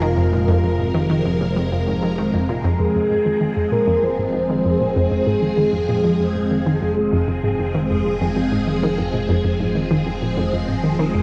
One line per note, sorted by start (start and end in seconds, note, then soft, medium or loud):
0.00 2.77 F1 medium
0.00 2.76 C3 medium
0.00 0.11 D#3 loud
0.00 2.76 F3 medium
0.00 2.76 G#3 medium
0.00 2.14 F4 medium
0.00 2.79 A#4 medium
0.17 0.31 F2 medium
0.33 0.47 A#2 medium
0.48 0.57 F2 loud
0.64 0.73 F2 medium
0.79 0.88 G#2 medium
0.94 1.08 D#3 medium
1.10 1.19 D#3 medium
1.25 1.39 F2 medium
1.41 1.54 A#2 medium
1.56 1.65 F2 loud
1.72 1.81 F2 medium
1.87 1.96 G#2 medium
2.02 2.16 D#3 medium
2.18 2.27 D#3 loud
2.34 2.47 F2 medium
2.49 2.63 A#2 medium
2.64 2.74 F2 loud
2.79 2.89 F2 loud
2.79 11.23 F3 medium
2.79 11.23 G#3 medium
2.79 11.23 C4 medium
2.79 11.23 G#4 medium
2.79 3.69 G#4 loud
2.95 3.04 F2 medium
3.11 3.20 G#2 medium
3.26 3.40 D#3 medium
3.41 3.51 D#3 loud
3.57 3.71 F2 medium
3.72 3.86 A#2 medium
3.72 4.05 A#4 loud
3.88 3.97 F2 loud
4.03 4.13 F2 medium
4.03 5.26 C5 loud
4.19 4.28 G#2 medium
4.34 4.48 D#3 medium
4.50 4.59 D#3 loud
4.65 4.79 F2 medium
4.80 4.94 A#2 medium
4.96 5.05 F2 loud
5.11 5.21 F2 medium
5.27 5.36 G#2 medium
5.27 7.09 G#4 loud
5.42 5.56 D#3 medium
5.58 5.67 D#3 medium
5.73 5.87 F2 medium
5.89 6.03 A#2 medium
6.04 6.14 F2 loud
6.20 6.29 F2 medium
6.35 6.45 G#2 medium
6.51 6.65 D#3 medium
6.66 6.76 D#3 loud
6.82 6.96 F2 medium
6.97 7.11 A#2 medium
7.13 7.22 F2 loud
7.28 7.37 F2 medium
7.44 7.53 G#2 medium
7.59 7.73 D#3 medium
7.75 7.84 D#3 loud
7.90 8.04 F2 medium
8.06 8.20 A#2 medium
8.21 8.30 F2 loud
8.36 8.46 F2 medium
8.52 8.61 G#2 medium
8.67 8.81 D#3 medium
8.83 8.92 D#3 loud
8.98 9.12 F2 medium
9.14 9.28 A#2 medium
9.29 9.38 F2 loud
9.45 9.54 F2 medium
9.60 9.69 G#2 medium
9.75 9.89 D#3 medium
9.91 10.00 D#3 loud
10.06 10.20 F2 medium
10.22 10.36 A#2 medium
10.37 10.47 F2 loud
10.53 10.62 F2 medium
10.68 10.78 G#2 medium
10.84 10.98 D#3 medium
10.99 11.09 D#3 loud
11.15 11.23 F2 medium